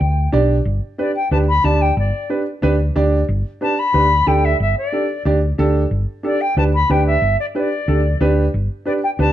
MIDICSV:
0, 0, Header, 1, 4, 480
1, 0, Start_track
1, 0, Key_signature, 1, "major"
1, 0, Tempo, 328048
1, 963, Time_signature, 4, 2, 24, 8
1, 13644, End_track
2, 0, Start_track
2, 0, Title_t, "Flute"
2, 0, Program_c, 0, 73
2, 0, Note_on_c, 0, 79, 79
2, 431, Note_off_c, 0, 79, 0
2, 1453, Note_on_c, 0, 74, 71
2, 1668, Note_off_c, 0, 74, 0
2, 1677, Note_on_c, 0, 79, 84
2, 1903, Note_off_c, 0, 79, 0
2, 1920, Note_on_c, 0, 81, 86
2, 2008, Note_off_c, 0, 81, 0
2, 2169, Note_on_c, 0, 83, 95
2, 2401, Note_on_c, 0, 81, 98
2, 2423, Note_off_c, 0, 83, 0
2, 2650, Note_on_c, 0, 79, 89
2, 2672, Note_off_c, 0, 81, 0
2, 2887, Note_off_c, 0, 79, 0
2, 2905, Note_on_c, 0, 74, 62
2, 3342, Note_off_c, 0, 74, 0
2, 5292, Note_on_c, 0, 81, 90
2, 5538, Note_on_c, 0, 83, 99
2, 5560, Note_off_c, 0, 81, 0
2, 6245, Note_on_c, 0, 79, 85
2, 6267, Note_off_c, 0, 83, 0
2, 6502, Note_on_c, 0, 76, 83
2, 6524, Note_off_c, 0, 79, 0
2, 6726, Note_off_c, 0, 76, 0
2, 6734, Note_on_c, 0, 76, 80
2, 6954, Note_off_c, 0, 76, 0
2, 6983, Note_on_c, 0, 74, 78
2, 7645, Note_off_c, 0, 74, 0
2, 9133, Note_on_c, 0, 74, 82
2, 9373, Note_on_c, 0, 79, 96
2, 9395, Note_off_c, 0, 74, 0
2, 9610, Note_off_c, 0, 79, 0
2, 9617, Note_on_c, 0, 81, 91
2, 9705, Note_off_c, 0, 81, 0
2, 9863, Note_on_c, 0, 83, 88
2, 10100, Note_on_c, 0, 79, 90
2, 10122, Note_off_c, 0, 83, 0
2, 10322, Note_off_c, 0, 79, 0
2, 10331, Note_on_c, 0, 76, 93
2, 10775, Note_off_c, 0, 76, 0
2, 10817, Note_on_c, 0, 74, 81
2, 10905, Note_off_c, 0, 74, 0
2, 11055, Note_on_c, 0, 74, 74
2, 12192, Note_off_c, 0, 74, 0
2, 12963, Note_on_c, 0, 74, 87
2, 13051, Note_off_c, 0, 74, 0
2, 13217, Note_on_c, 0, 79, 89
2, 13304, Note_off_c, 0, 79, 0
2, 13457, Note_on_c, 0, 81, 102
2, 13644, Note_off_c, 0, 81, 0
2, 13644, End_track
3, 0, Start_track
3, 0, Title_t, "Upright piano"
3, 0, Program_c, 1, 0
3, 475, Note_on_c, 1, 62, 83
3, 480, Note_on_c, 1, 67, 77
3, 489, Note_on_c, 1, 74, 91
3, 815, Note_off_c, 1, 62, 0
3, 818, Note_off_c, 1, 67, 0
3, 822, Note_off_c, 1, 74, 0
3, 1439, Note_on_c, 1, 62, 57
3, 1443, Note_on_c, 1, 67, 58
3, 1450, Note_on_c, 1, 71, 69
3, 1609, Note_off_c, 1, 62, 0
3, 1611, Note_off_c, 1, 67, 0
3, 1615, Note_off_c, 1, 71, 0
3, 1920, Note_on_c, 1, 62, 65
3, 1928, Note_on_c, 1, 67, 64
3, 1930, Note_on_c, 1, 71, 69
3, 2090, Note_off_c, 1, 62, 0
3, 2094, Note_off_c, 1, 67, 0
3, 2095, Note_off_c, 1, 71, 0
3, 2397, Note_on_c, 1, 62, 69
3, 2407, Note_on_c, 1, 67, 61
3, 2412, Note_on_c, 1, 74, 69
3, 2736, Note_off_c, 1, 62, 0
3, 2742, Note_off_c, 1, 67, 0
3, 2744, Note_off_c, 1, 74, 0
3, 3359, Note_on_c, 1, 62, 62
3, 3364, Note_on_c, 1, 67, 52
3, 3369, Note_on_c, 1, 71, 68
3, 3530, Note_off_c, 1, 62, 0
3, 3532, Note_off_c, 1, 67, 0
3, 3535, Note_off_c, 1, 71, 0
3, 3838, Note_on_c, 1, 62, 84
3, 3845, Note_on_c, 1, 67, 72
3, 3851, Note_on_c, 1, 71, 96
3, 4009, Note_off_c, 1, 62, 0
3, 4013, Note_off_c, 1, 67, 0
3, 4016, Note_off_c, 1, 71, 0
3, 4325, Note_on_c, 1, 67, 74
3, 4326, Note_on_c, 1, 62, 85
3, 4334, Note_on_c, 1, 74, 94
3, 4661, Note_off_c, 1, 62, 0
3, 4661, Note_off_c, 1, 67, 0
3, 4666, Note_off_c, 1, 74, 0
3, 5281, Note_on_c, 1, 62, 65
3, 5289, Note_on_c, 1, 67, 61
3, 5293, Note_on_c, 1, 71, 65
3, 5451, Note_off_c, 1, 62, 0
3, 5455, Note_off_c, 1, 67, 0
3, 5457, Note_off_c, 1, 71, 0
3, 5755, Note_on_c, 1, 62, 66
3, 5758, Note_on_c, 1, 67, 66
3, 5768, Note_on_c, 1, 71, 71
3, 5929, Note_off_c, 1, 62, 0
3, 5930, Note_off_c, 1, 67, 0
3, 5935, Note_off_c, 1, 71, 0
3, 6239, Note_on_c, 1, 62, 66
3, 6246, Note_on_c, 1, 67, 69
3, 6251, Note_on_c, 1, 69, 81
3, 6579, Note_off_c, 1, 62, 0
3, 6582, Note_off_c, 1, 67, 0
3, 6585, Note_off_c, 1, 69, 0
3, 7204, Note_on_c, 1, 62, 62
3, 7212, Note_on_c, 1, 67, 59
3, 7216, Note_on_c, 1, 69, 63
3, 7373, Note_off_c, 1, 62, 0
3, 7377, Note_off_c, 1, 67, 0
3, 7379, Note_off_c, 1, 69, 0
3, 7686, Note_on_c, 1, 62, 76
3, 7699, Note_on_c, 1, 67, 75
3, 7700, Note_on_c, 1, 74, 88
3, 7854, Note_off_c, 1, 62, 0
3, 7861, Note_off_c, 1, 67, 0
3, 7861, Note_off_c, 1, 74, 0
3, 8169, Note_on_c, 1, 62, 74
3, 8174, Note_on_c, 1, 67, 71
3, 8182, Note_on_c, 1, 69, 93
3, 8504, Note_off_c, 1, 62, 0
3, 8507, Note_off_c, 1, 67, 0
3, 8510, Note_off_c, 1, 69, 0
3, 9120, Note_on_c, 1, 62, 63
3, 9133, Note_on_c, 1, 67, 59
3, 9137, Note_on_c, 1, 69, 71
3, 9291, Note_off_c, 1, 62, 0
3, 9298, Note_off_c, 1, 67, 0
3, 9300, Note_off_c, 1, 69, 0
3, 9612, Note_on_c, 1, 62, 68
3, 9615, Note_on_c, 1, 67, 57
3, 9622, Note_on_c, 1, 71, 73
3, 9777, Note_off_c, 1, 62, 0
3, 9779, Note_off_c, 1, 67, 0
3, 9782, Note_off_c, 1, 71, 0
3, 10090, Note_on_c, 1, 62, 71
3, 10095, Note_on_c, 1, 67, 66
3, 10101, Note_on_c, 1, 71, 70
3, 10424, Note_off_c, 1, 62, 0
3, 10427, Note_off_c, 1, 67, 0
3, 10430, Note_off_c, 1, 71, 0
3, 11044, Note_on_c, 1, 62, 60
3, 11051, Note_on_c, 1, 67, 63
3, 11059, Note_on_c, 1, 71, 70
3, 11213, Note_off_c, 1, 62, 0
3, 11217, Note_off_c, 1, 67, 0
3, 11221, Note_off_c, 1, 71, 0
3, 11527, Note_on_c, 1, 62, 66
3, 11532, Note_on_c, 1, 67, 59
3, 11539, Note_on_c, 1, 69, 76
3, 11695, Note_off_c, 1, 62, 0
3, 11697, Note_off_c, 1, 67, 0
3, 11700, Note_off_c, 1, 69, 0
3, 12006, Note_on_c, 1, 62, 79
3, 12013, Note_on_c, 1, 67, 84
3, 12019, Note_on_c, 1, 71, 86
3, 12342, Note_off_c, 1, 62, 0
3, 12345, Note_off_c, 1, 67, 0
3, 12348, Note_off_c, 1, 71, 0
3, 12956, Note_on_c, 1, 62, 62
3, 12966, Note_on_c, 1, 67, 59
3, 12969, Note_on_c, 1, 71, 68
3, 13129, Note_off_c, 1, 62, 0
3, 13134, Note_off_c, 1, 67, 0
3, 13136, Note_off_c, 1, 71, 0
3, 13445, Note_on_c, 1, 62, 72
3, 13446, Note_on_c, 1, 67, 61
3, 13457, Note_on_c, 1, 71, 75
3, 13613, Note_off_c, 1, 62, 0
3, 13614, Note_off_c, 1, 67, 0
3, 13619, Note_off_c, 1, 71, 0
3, 13644, End_track
4, 0, Start_track
4, 0, Title_t, "Fingered electric bass"
4, 0, Program_c, 2, 33
4, 9, Note_on_c, 2, 38, 88
4, 391, Note_off_c, 2, 38, 0
4, 486, Note_on_c, 2, 35, 86
4, 869, Note_off_c, 2, 35, 0
4, 957, Note_on_c, 2, 31, 90
4, 1152, Note_off_c, 2, 31, 0
4, 1920, Note_on_c, 2, 38, 84
4, 2306, Note_off_c, 2, 38, 0
4, 2402, Note_on_c, 2, 38, 83
4, 2787, Note_off_c, 2, 38, 0
4, 2881, Note_on_c, 2, 31, 94
4, 3074, Note_off_c, 2, 31, 0
4, 3852, Note_on_c, 2, 38, 84
4, 4233, Note_off_c, 2, 38, 0
4, 4331, Note_on_c, 2, 38, 86
4, 4713, Note_off_c, 2, 38, 0
4, 4807, Note_on_c, 2, 31, 93
4, 4998, Note_off_c, 2, 31, 0
4, 5767, Note_on_c, 2, 38, 89
4, 6150, Note_off_c, 2, 38, 0
4, 6250, Note_on_c, 2, 38, 77
4, 6633, Note_off_c, 2, 38, 0
4, 6732, Note_on_c, 2, 31, 89
4, 6922, Note_off_c, 2, 31, 0
4, 7689, Note_on_c, 2, 38, 77
4, 8072, Note_off_c, 2, 38, 0
4, 8176, Note_on_c, 2, 38, 83
4, 8556, Note_off_c, 2, 38, 0
4, 8647, Note_on_c, 2, 31, 76
4, 8839, Note_off_c, 2, 31, 0
4, 9608, Note_on_c, 2, 38, 83
4, 9991, Note_off_c, 2, 38, 0
4, 10092, Note_on_c, 2, 38, 87
4, 10474, Note_off_c, 2, 38, 0
4, 10560, Note_on_c, 2, 31, 88
4, 10755, Note_off_c, 2, 31, 0
4, 11529, Note_on_c, 2, 38, 90
4, 11912, Note_off_c, 2, 38, 0
4, 12005, Note_on_c, 2, 38, 88
4, 12390, Note_off_c, 2, 38, 0
4, 12496, Note_on_c, 2, 31, 81
4, 12684, Note_off_c, 2, 31, 0
4, 13446, Note_on_c, 2, 38, 92
4, 13644, Note_off_c, 2, 38, 0
4, 13644, End_track
0, 0, End_of_file